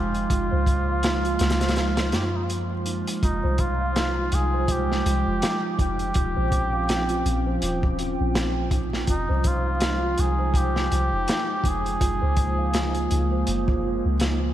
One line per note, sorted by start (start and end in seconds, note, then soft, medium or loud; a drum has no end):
0.00 0.27 F1 medium
0.00 11.97 F3 medium
0.00 3.19 G#3 medium
0.00 0.28 D#4 medium
0.00 0.32 D#4 medium
0.00 0.30 F4 loud
0.00 2.16 F4 loud
0.00 0.32 C5 loud
0.00 0.26 G5 medium
0.14 closed hi-hat soft
0.30 0.49 F#1 loud
0.30 3.20 A#3 medium
0.30 0.49 F4 medium
0.30 kick loud
0.30 closed hi-hat medium
0.51 1.38 C#2 loud
0.51 0.66 C5 loud
0.66 kick medium
0.66 closed hi-hat medium
0.87 1.02 F5 medium
1.03 1.22 F4 medium
1.03 snare loud
1.03 closed hi-hat medium
1.25 1.38 F4 loud
1.25 closed hi-hat soft
1.39 2.14 C#2 loud
1.39 1.60 D#4 medium
1.39 snare medium
1.39 closed hi-hat medium
1.50 snare medium
1.50 closed hi-hat medium
1.60 2.11 C5 loud
1.60 snare medium
1.60 closed hi-hat medium
1.68 snare medium
1.68 closed hi-hat medium
1.76 snare loud
1.76 closed hi-hat medium
1.97 snare loud
1.97 closed hi-hat medium
2.12 3.03 F#2 medium
2.12 2.85 F4 medium
2.12 2.26 G4 medium
2.12 snare medium
2.12 closed hi-hat medium
2.25 2.37 F4 medium
2.36 2.45 D#4 medium
2.43 2.50 F4 medium
2.50 closed hi-hat medium
2.86 3.06 D#4 medium
2.86 closed hi-hat medium
3.07 closed hi-hat medium
3.23 3.42 F1 loud
3.23 6.13 G#3 medium
3.23 6.13 D#4 medium
3.23 3.62 D#4 loud
3.23 3.42 F4 medium
3.23 11.97 G5 medium
3.23 kick loud
3.23 closed hi-hat medium
3.43 4.30 C2 medium
3.43 3.58 C5 loud
3.58 4.36 F4 loud
3.58 kick medium
3.58 closed hi-hat medium
3.80 3.95 F5 medium
3.96 4.15 F4 medium
3.96 snare loud
3.96 closed hi-hat medium
4.17 4.31 F4 loud
4.32 5.03 C2 loud
4.32 4.53 D#4 medium
4.32 4.73 G#4 loud
4.32 closed hi-hat medium
4.54 5.04 C5 loud
4.68 5.80 G4 loud
4.68 kick loud
4.68 closed hi-hat medium
4.92 snare soft
5.06 5.24 C2 loud
5.06 5.78 F4 medium
5.06 closed hi-hat medium
5.27 5.41 F1 medium
5.42 snare loud
5.42 closed hi-hat medium
5.79 6.12 F1 medium
5.79 5.99 D#4 medium
5.79 7.96 G4 loud
5.79 kick medium
5.79 closed hi-hat medium
5.99 closed hi-hat soft
6.14 6.34 D#1 medium
6.14 9.06 C4 medium
6.14 9.06 C#4 medium
6.14 6.35 F4 medium
6.14 kick loud
6.14 closed hi-hat medium
6.37 7.23 A#1 medium
6.37 6.51 C5 medium
6.52 kick medium
6.52 closed hi-hat medium
6.73 6.88 F5 medium
6.89 7.08 F4 medium
6.89 snare loud
6.89 closed hi-hat medium
7.09 7.24 F4 loud
7.09 closed hi-hat soft
7.26 7.58 A#1 loud
7.26 7.46 D#4 medium
7.26 closed hi-hat medium
7.46 7.97 C5 loud
7.62 8.16 D#1 loud
7.62 closed hi-hat medium
7.83 kick loud
7.99 8.70 F4 medium
7.99 closed hi-hat medium
8.20 9.06 A#1 medium
8.35 snare loud
8.35 closed hi-hat medium
8.71 8.91 D#4 medium
8.71 kick loud
8.71 closed hi-hat medium
8.93 snare soft
9.07 9.27 F1 loud
9.07 14.54 G#3 medium
9.07 11.98 D#4 medium
9.07 9.49 D#4 loud
9.07 9.27 F4 medium
9.07 kick loud
9.07 closed hi-hat medium
9.29 10.15 C2 loud
9.29 9.44 C5 loud
9.44 10.22 F4 loud
9.44 kick medium
9.44 closed hi-hat medium
9.65 9.80 F5 medium
9.80 10.00 F4 medium
9.80 snare loud
9.80 closed hi-hat medium
10.02 10.16 F4 loud
10.18 10.89 C2 loud
10.18 10.38 D#4 medium
10.18 10.58 G#4 loud
10.18 closed hi-hat medium
10.39 10.89 C5 loud
10.54 11.69 G4 loud
10.54 kick loud
10.54 closed hi-hat medium
10.76 snare soft
10.91 11.10 C2 loud
10.91 11.63 F4 medium
10.91 closed hi-hat medium
11.13 11.26 F1 medium
11.28 snare loud
11.28 closed hi-hat medium
11.64 11.97 F1 medium
11.64 11.84 D#4 medium
11.64 13.85 G#4 loud
11.64 kick loud
11.64 closed hi-hat medium
11.86 closed hi-hat soft
12.01 12.20 F#1 loud
12.01 14.54 F3 medium
12.01 14.54 A#3 medium
12.01 12.20 F4 medium
12.01 kick loud
12.01 closed hi-hat medium
12.22 13.08 C#2 loud
12.22 12.37 C5 medium
12.37 kick medium
12.37 closed hi-hat medium
12.59 12.73 F5 medium
12.74 12.93 F4 medium
12.74 snare loud
12.74 closed hi-hat medium
12.95 13.09 F4 loud
12.95 closed hi-hat soft
13.10 13.44 C#2 loud
13.10 13.31 D#4 medium
13.10 closed hi-hat medium
13.32 13.82 C5 loud
13.47 14.01 F#1 loud
13.47 closed hi-hat medium
13.68 kick loud
13.84 14.54 F4 medium
14.05 14.54 C#2 medium
14.20 snare loud
14.20 closed hi-hat medium